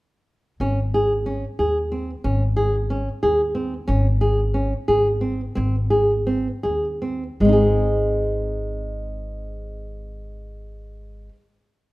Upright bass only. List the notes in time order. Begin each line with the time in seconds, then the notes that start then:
0.60 G#1
1.59 D#2
2.24 G#1
3.23 D#2
3.89 G#1
4.88 G#1
5.57 G#1
6.65 D#2
7.40 G#1